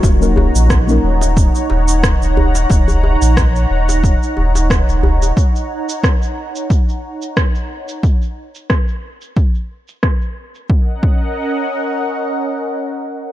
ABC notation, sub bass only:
X:1
M:4/4
L:1/16
Q:"Swing 16ths" 1/4=90
K:Ebm
V:1 name="Sub bass" clef=bass
E,,,3 B,,,3 E,,,3 z E,,,3 E,,,3 | E,,,3 B,,,3 E,,,3 z E,,,3 E,,,3 | z16 | z16 |
z16 |]